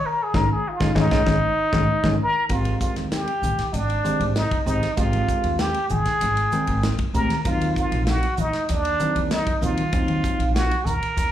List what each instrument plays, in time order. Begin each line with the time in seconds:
0.06 muted trumpet A#4
0.23 muted trumpet G#4
0.34 upright bass G#1, tine electric piano G#3 C#4 D#4, muted trumpet A#4, kick, snare, high conga
0.52 muted trumpet G#4
0.68 muted trumpet F4
0.80 upright bass G#1, tine electric piano G#3 C#4 D#4, kick, snare, high conga
0.95 upright bass G#1, tine electric piano G#3 C#4 D#4, muted trumpet D#4, kick, snare, high conga
1.11 upright bass G#1, tine electric piano G#3 C#4 D#4, kick, snare, high conga
1.26 upright bass G#1, tine electric piano G#3 C#4 D#4, kick, snare, high conga
1.72 upright bass G#1, tine electric piano G#3 C#4 D#4, kick, snare, high conga
2.03 upright bass G#1, tine electric piano G#3 C#4 D#4, kick, snare, high conga
2.23 muted trumpet A#4
2.49 upright bass G#1, tine electric piano G#3 C4 G4 A#4, muted trumpet F4, kick, hi-hat pedal, ride
2.65 ride, high conga
2.81 muted trumpet F4, kick, hi-hat pedal
2.96 upright bass D#2, snare, ride
3.11 muted trumpet G4, snare, hi-hat pedal, ride
3.28 ride
3.42 upright bass G#1, hi-hat pedal, high conga, low conga
3.58 muted upright bass stroke, snare, ride
3.73 upright bass G#1, muted trumpet D4, hi-hat pedal, ride
3.90 ride
4.04 tine electric piano G#3 C4 G4 C5, hi-hat pedal, high conga
4.20 upright bass G#1, ride
4.35 muted trumpet D#4, snare, hi-hat pedal, ride
4.51 muted upright bass stroke, kick, ride
4.66 upright bass G#1, tine electric piano G#3 C4 G4 C5, muted trumpet D#4, hi-hat pedal, low conga
4.83 snare, ride, high conga
4.97 upright bass G#1, tine electric piano G#3 C4 G4 A#4, muted trumpet F4, kick, hi-hat pedal, ride
5.13 ride, high conga
5.28 kick, hi-hat pedal
5.44 upright bass D#2, ride
5.59 muted trumpet G4, snare, hi-hat pedal, ride
5.74 ride
5.90 upright bass G#1, muted trumpet G#4, hi-hat pedal, high conga, low conga
6.06 muted upright bass stroke, snare, ride
6.21 upright bass G#1, hi-hat pedal, ride
6.37 ride
6.52 tine electric piano G#3 C4 A#4 G5, hi-hat pedal, high conga
6.67 upright bass G#1, ride
6.83 snare, hi-hat pedal, ride
6.99 muted upright bass stroke, kick, ride
7.14 upright bass D2, tine electric piano G#3 C4 G4 A#4, muted trumpet A#4, hi-hat pedal, low conga
7.29 snare, ride, high conga
7.45 upright bass D#2, tine electric piano F#3 C4 D#4 A#4, muted trumpet F4, kick, hi-hat pedal, ride
7.61 ride, high conga
7.76 muted trumpet F4, kick, hi-hat pedal
7.92 upright bass A#1, ride
8.07 muted trumpet F#4, snare, hi-hat pedal, ride
8.23 ride
8.37 upright bass D#2, muted trumpet D#4, hi-hat pedal, high conga, low conga
8.53 muted upright bass stroke, snare, ride
8.69 upright bass D#2, muted trumpet D4, hi-hat pedal, ride
8.85 ride
9.00 tine electric piano D#3 F#3 C4 A#4, hi-hat pedal, high conga
9.15 upright bass D#2, ride
9.31 muted trumpet D#4, snare, hi-hat pedal, ride
9.47 muted upright bass stroke, kick, ride
9.61 upright bass D#2, tine electric piano F#3 C4 D#4 A#4, muted trumpet F4, hi-hat pedal, low conga
9.78 ride, high conga
9.93 upright bass D#2, tine electric piano F#3 C4 D#4 F4, kick, hi-hat pedal, ride
10.08 ride, high conga
10.24 kick, hi-hat pedal
10.39 upright bass A#1, ride
10.54 muted trumpet F#4, snare, hi-hat pedal, ride
10.71 ride
10.85 upright bass D#2, muted trumpet A#4, hi-hat pedal, high conga, low conga
11.01 muted upright bass stroke, ride
11.17 upright bass D#2, hi-hat pedal, ride